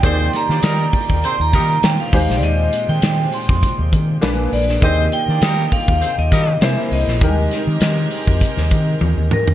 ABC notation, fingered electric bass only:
X:1
M:4/4
L:1/16
Q:"Swing 16ths" 1/4=100
K:Eb
V:1 name="Fingered electric bass" clef=bass
E,,2 z E, E,2 z E,, z E,, E,2 E, z E,, B,,, | E,,2 z E, E,2 z F,, z E,, E,2 B,,,2 B,,,2 | E,,2 z E, E,2 z E,, z E,, E,2 C, z C,, B,,, | E,,2 z E, E,2 z F,, z E,, E,2 E,, E,, z F,, |]